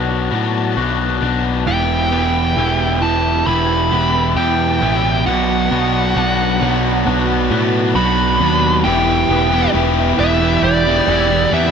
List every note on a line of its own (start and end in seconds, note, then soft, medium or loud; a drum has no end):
0.00 0.29 B1 medium
0.00 0.29 B2 medium
0.00 0.31 B2 medium
0.00 0.30 F#3 medium
0.00 1.66 F#3 medium
0.00 0.31 B3 medium
0.00 0.31 D4 medium
0.00 0.31 F#4 medium
0.00 1.62 F#4 medium
0.00 1.62 D5 medium
0.00 0.73 F#5 medium
0.00 1.65 A5 medium
0.30 0.74 A2 medium
0.30 0.75 B2 medium
0.30 0.76 F#3 medium
0.30 0.77 B3 medium
0.30 0.76 D4 medium
0.30 0.77 F#4 medium
0.76 1.19 B1 medium
0.76 1.20 B2 medium
0.76 1.20 F#3 medium
0.76 1.21 B3 medium
0.76 1.22 D4 loud
0.76 1.22 F#4 medium
1.21 1.64 B1 medium
1.21 1.64 B2 medium
1.21 1.64 F#3 medium
1.21 1.67 B3 medium
1.21 1.65 D4 medium
1.21 1.65 F#4 medium
1.66 2.53 E1 medium
1.66 2.10 E2 medium
1.66 2.10 B2 medium
1.66 2.10 E3 medium
1.66 2.11 B3 medium
1.66 2.11 E4 medium
1.66 5.23 G4 medium
1.66 2.11 G4 loud
1.66 5.23 E5 medium
1.66 3.06 G5 medium
1.66 3.45 B5 medium
2.11 2.55 E2 medium
2.11 2.55 B2 medium
2.11 2.57 E3 medium
2.11 2.58 B3 medium
2.11 2.58 E4 medium
2.11 2.58 G4 medium
2.56 3.43 E1 medium
2.56 3.01 E2 medium
2.56 3.01 B2 medium
2.56 3.01 E3 medium
2.56 3.02 B3 loud
2.56 3.02 E4 loud
2.56 3.02 G4 loud
3.02 3.47 E2 medium
3.02 3.47 B2 medium
3.02 3.46 E3 medium
3.02 3.47 B3 medium
3.02 3.46 E4 medium
3.02 3.47 G4 medium
3.02 3.46 A5 medium
3.46 3.89 E1 medium
3.46 3.92 E2 medium
3.46 3.92 B2 medium
3.46 3.90 E3 medium
3.46 3.91 B3 medium
3.46 3.91 E4 loud
3.46 3.91 G4 medium
3.46 5.24 A5 medium
3.46 4.39 B5 loud
3.91 4.34 E1 medium
3.91 4.35 E2 medium
3.91 4.36 B2 medium
3.91 4.35 E3 medium
3.91 4.36 B3 medium
3.91 4.36 E4 medium
3.91 4.36 G4 medium
4.36 4.79 E2 loud
4.36 4.80 B2 loud
4.36 4.81 E3 loud
4.36 4.81 B3 loud
4.36 4.81 E4 medium
4.36 4.82 G4 loud
4.36 5.26 G5 medium
4.81 5.24 A1 loud
4.81 5.23 E2 medium
4.81 5.24 B2 medium
4.81 5.24 E3 medium
4.81 5.27 B3 medium
4.81 5.24 E4 loud
4.81 5.25 G4 medium
5.25 5.69 B1 medium
5.25 5.69 B2 medium
5.25 5.70 F#3 medium
5.25 5.70 B3 loud
5.25 5.71 D4 loud
5.25 8.80 F#4 medium
5.25 5.71 F#4 medium
5.25 8.80 D5 medium
5.25 7.91 F#5 medium
5.25 8.81 B5 medium
5.71 6.14 B1 medium
5.71 6.14 B2 medium
5.71 6.15 F#3 medium
5.71 6.15 B3 medium
5.71 6.15 D4 loud
5.71 6.16 F#4 medium
6.15 6.59 B1 medium
6.15 6.59 B2 loud
6.15 6.60 F#3 loud
6.15 6.60 B3 loud
6.15 6.61 D4 loud
6.15 6.61 F#4 loud
6.60 7.04 B1 medium
6.60 7.05 B2 medium
6.60 7.05 F#3 medium
6.60 7.05 B3 medium
6.60 7.06 D4 medium
6.60 7.06 F#4 loud
7.06 7.49 B1 medium
7.06 7.49 B2 loud
7.06 7.50 F#3 medium
7.06 7.50 B3 loud
7.06 7.51 D4 loud
7.06 7.51 F#4 loud
7.50 7.93 A2 medium
7.50 7.94 B2 medium
7.50 7.95 F#3 medium
7.50 7.95 B3 medium
7.50 7.95 D4 medium
7.50 7.96 F#4 loud
7.95 8.37 B1 medium
7.95 8.39 B2 loud
7.95 8.40 F#3 loud
7.95 8.40 B3 medium
7.95 8.40 D4 loud
7.95 8.41 F#4 loud
7.95 8.88 B5 loud
8.40 8.82 D#2 medium
8.40 8.82 B2 medium
8.40 8.83 F#3 medium
8.40 8.83 B3 medium
8.40 8.83 D4 loud
8.40 8.83 F#4 loud
8.84 9.23 E1 medium
8.84 9.28 E3 medium
8.84 9.30 B3 loud
8.84 9.30 E4 loud
8.84 11.71 G4 medium
8.84 9.31 G4 loud
8.84 10.62 E5 medium
8.84 9.70 G5 loud
8.84 11.71 B5 medium
9.29 9.67 E1 medium
9.29 9.73 E3 medium
9.29 9.54 B3 medium
9.29 9.52 E4 medium
9.29 9.50 G4 medium
9.52 9.74 B3 medium
9.52 9.74 E4 medium
9.52 9.75 G4 medium
9.74 10.12 E1 medium
9.74 10.17 E3 medium
9.74 10.19 B3 loud
9.74 10.19 E4 loud
9.74 10.20 G4 loud
10.19 10.56 E1 medium
10.19 10.86 E3 medium
10.19 10.43 B3 medium
10.19 10.42 E4 medium
10.19 10.40 G4 medium
10.19 10.61 E5 medium
10.40 10.88 B3 medium
10.40 10.86 E4 medium
10.40 10.84 G4 medium
10.40 muted overdriven electric guitar stroke medium
10.61 11.00 E1 loud
10.61 11.71 G4 medium
10.61 11.54 D5 medium
10.61 11.71 F#5 medium
10.86 11.08 B3 medium
10.86 11.08 E4 medium
10.86 11.09 G4 medium
11.08 11.45 E1 medium
11.08 11.51 E3 medium
11.08 11.32 B3 medium
11.08 11.30 E4 medium
11.08 11.29 G4 medium
11.30 11.52 B3 medium
11.30 11.53 E4 medium
11.30 11.53 G4 medium
11.30 muted overdriven electric guitar stroke medium
11.52 11.71 E2 loud
11.52 11.71 E3 loud
11.52 11.71 B3 loud
11.52 11.71 E4 loud
11.52 11.71 G4 loud
11.52 11.71 E5 medium